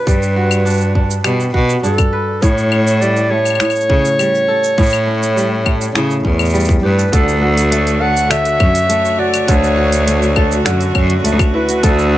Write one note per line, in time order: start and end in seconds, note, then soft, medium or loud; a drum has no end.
0.00 0.65 D4 medium
0.00 0.36 F#4 medium
0.00 2.11 B4 medium
0.07 1.21 G2 medium
0.07 1.24 G3 medium
0.07 1.21 B4 medium
0.07 kick loud
0.07 cabasa soft
0.23 cabasa soft
0.36 1.53 F#4 medium
0.51 cabasa medium
0.51 claves medium
0.65 0.95 D4 medium
0.65 cabasa soft
0.70 cabasa soft
0.74 cabasa soft
0.77 cabasa soft
0.81 cabasa soft
0.95 1.83 D4 medium
0.95 kick medium
1.11 cabasa medium
1.24 1.49 B2 medium
1.24 2.77 G3 medium
1.24 finger snap medium
1.24 cabasa soft
1.24 claves medium
1.40 cabasa soft
1.54 1.79 B2 medium
1.54 3.00 F#4 medium
1.54 kick medium
1.69 cabasa medium
1.83 1.96 G2 medium
1.83 2.77 D4 medium
1.83 2.44 A4 medium
1.83 cabasa medium
1.98 kick medium
1.98 cabasa soft
1.98 claves medium
2.13 3.36 B4 medium
2.42 3.59 A2 medium
2.42 3.56 A2 medium
2.42 3.03 C#5 loud
2.42 kick loud
2.42 cabasa medium
2.58 cabasa soft
2.71 3.89 C#4 medium
2.71 claves medium
2.87 cabasa medium
3.01 4.18 G3 medium
3.01 3.32 D5 loud
3.01 cabasa soft
3.16 cabasa soft
3.31 5.64 A3 medium
3.31 6.54 C#5 loud
3.45 cabasa medium
3.45 claves soft
3.50 claves soft
3.55 claves soft
3.60 4.77 A2 medium
3.60 finger snap medium
3.60 cabasa soft
3.60 claves medium
3.65 claves medium
3.70 cabasa soft
3.70 claves medium
3.76 cabasa soft
3.80 cabasa soft
3.89 4.02 C#3 medium
3.89 5.07 C#4 medium
3.89 kick medium
4.05 cabasa medium
4.19 5.35 G3 medium
4.19 cabasa medium
4.19 claves medium
4.35 cabasa soft
4.48 6.84 A4 medium
4.64 cabasa medium
4.78 5.94 A2 medium
4.78 5.91 A2 medium
4.78 kick loud
4.78 cabasa soft
4.82 cabasa soft
4.86 cabasa soft
4.89 cabasa soft
4.89 claves medium
4.93 cabasa soft
5.07 6.24 C#4 medium
5.23 cabasa medium
5.36 6.52 G3 medium
5.36 cabasa medium
5.65 7.65 A3 medium
5.65 kick medium
5.65 claves medium
5.81 cabasa medium
5.95 7.18 A2 medium
5.95 6.20 C#3 medium
5.95 finger snap medium
5.95 cabasa soft
6.10 cabasa soft
6.25 6.79 E2 medium
6.25 7.98 C#4 medium
6.25 kick medium
6.39 cabasa soft
6.39 claves medium
6.45 cabasa soft
6.50 7.18 G3 medium
6.50 cabasa soft
6.55 cabasa medium
6.60 cabasa medium
6.65 cabasa medium
6.69 kick loud
6.83 7.08 G2 loud
6.83 7.47 G4 medium
6.83 7.16 B4 medium
6.98 7.12 A4 medium
6.98 cabasa medium
7.12 8.27 D2 loud
7.12 8.30 D3 medium
7.12 12.18 D3 medium
7.12 8.00 A4 medium
7.12 8.03 A4 medium
7.12 kick loud
7.12 closed hi-hat medium
7.12 cabasa medium
7.28 12.18 A3 medium
7.28 cabasa soft
7.41 9.17 F#4 medium
7.52 12.18 F#4 medium
7.57 closed hi-hat soft
7.57 cabasa medium
7.68 8.89 A3 medium
7.68 11.71 C#5 medium
7.72 closed hi-hat medium
7.72 cabasa soft
7.87 closed hi-hat soft
7.87 cabasa soft
8.01 9.47 A4 medium
8.01 8.32 F#5 loud
8.17 cabasa medium
8.30 9.47 D3 medium
8.30 9.20 E5 loud
8.30 finger snap medium
8.30 closed hi-hat medium
8.30 cabasa medium
8.30 claves medium
8.45 closed hi-hat soft
8.45 cabasa soft
8.60 8.72 F#2 medium
8.60 10.94 C#4 medium
8.60 kick loud
8.60 claves medium
8.75 closed hi-hat soft
8.75 cabasa medium
8.89 10.06 A3 medium
8.89 closed hi-hat medium
8.89 cabasa medium
9.05 cabasa soft
9.18 9.76 F#4 medium
9.18 9.50 D5 medium
9.34 closed hi-hat soft
9.34 cabasa medium
9.34 claves medium
9.47 10.62 D2 loud
9.47 10.65 D3 medium
9.47 10.36 A4 medium
9.47 10.66 C#5 loud
9.47 kick loud
9.47 closed hi-hat medium
9.47 cabasa medium
9.64 cabasa soft
9.77 11.54 F#4 medium
9.92 closed hi-hat soft
9.92 cabasa medium
10.07 11.24 A3 medium
10.07 closed hi-hat medium
10.07 cabasa medium
10.22 cabasa soft
10.36 11.82 A4 medium
10.36 kick medium
10.36 claves medium
10.52 cabasa medium
10.65 10.90 F#2 medium
10.65 11.83 D3 medium
10.65 finger snap medium
10.65 closed hi-hat medium
10.65 cabasa medium
10.81 closed hi-hat soft
10.81 cabasa soft
10.95 11.20 F#2 medium
10.95 12.18 C#4 medium
10.95 kick medium
10.95 claves medium
11.10 closed hi-hat soft
11.24 11.37 D2 medium
11.24 12.18 A3 medium
11.24 closed hi-hat medium
11.24 cabasa medium
11.39 kick loud
11.39 cabasa soft
11.39 claves medium
11.54 12.18 E4 medium
11.54 11.86 B4 medium
11.68 12.13 F#4 soft
11.68 closed hi-hat soft
11.68 cabasa medium
11.83 12.18 D2 loud
11.83 12.18 D3 medium
11.83 12.18 A4 medium
11.83 12.18 A4 loud
11.83 kick loud
11.83 closed hi-hat medium
11.83 cabasa medium
11.99 cabasa soft
12.13 12.18 F#4 medium